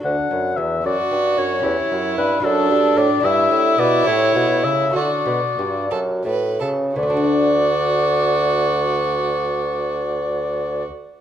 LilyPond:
<<
  \new Staff \with { instrumentName = "Oboe" } { \time 6/8 \key d \major \tempo 4. = 65 fis''4 e''8 d''4 cis''8~ | cis''4 b'8 a'4 d''8 | e''4 d''8 cis''4 e''8 | d''4. r4. |
d''2.~ | d''2. | }
  \new Staff \with { instrumentName = "Violin" } { \time 6/8 \key d \major r4. fis'4. | e'4. d'4. | e'2. | fis'4. a'8 b'8 a'8 |
fis'2.~ | fis'2. | }
  \new Staff \with { instrumentName = "Lute" } { \time 6/8 \key d \major <d' fis' a'>2. | <cis' g'>4. <d' fis' a'>4. | <d' e' g'>4. <a e' g'>4. | <a d' fis'>2. |
<d a d' fis' d''>2.~ | <d a d' fis' d''>2. | }
  \new Staff \with { instrumentName = "Lute" } { \clef bass \time 6/8 \key d \major d,8 fis,8 e,8 fis,8 g,8 fis,8 | e,8 fis,8 g,8 fis,8 g,8 a,8 | g,8 a,8 b,8 a,8 b,8 cis8 | d8 b,8 g,8 fis,8 a,8 cis8 |
r2. | r2. | }
  \new Staff \with { instrumentName = "Bassoon" } { \clef bass \time 6/8 \key d \major d,8 fis,8 e,8 fis,8 g,8 fis,8 | e,8 fis,8 g,8 fis,8 g,8 a,8 | g,8 a,8 b,8 a,8 b,8 cis8 | d8 b,8 g,8 fis,8 a,8 cis8 |
d,2.~ | d,2. | }
>>